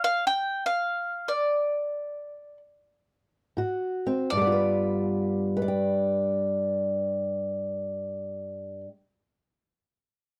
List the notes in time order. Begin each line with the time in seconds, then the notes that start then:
0.04 F5
0.27 G5
0.66 F5
1.28 D5
3.57 G#2 F#4
4.07 C4
4.30 G2 D5
4.37 G3
4.42 B3
4.47 F4
4.52 B4
5.57 B4
5.62 D5
5.68 G5